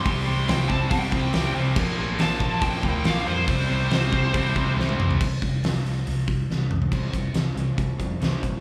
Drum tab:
CC |----------------|x---------------|----------------|x---------------|
HH |o---o---o---o---|----o---o---o---|o---o---o-------|--o-o-o-o-o-----|
SD |----o-------o---|----o-------o---|----o-------o---|----o-------o---|
T1 |----------------|----------------|-------------o--|----------------|
T2 |----------------|----------------|--------------o-|--------------o-|
FT |----------------|----------------|---------------o|---------------o|
BD |o-----o-o-o-----|o-----o-o-o-----|o-----o-o-o-----|o-o-------o-----|

CC |x---------------|
HH |--x-x-x-x-x-x-x-|
SD |----o-------o---|
T1 |----------------|
T2 |----------------|
FT |----------------|
BD |o-o-----o-o---o-|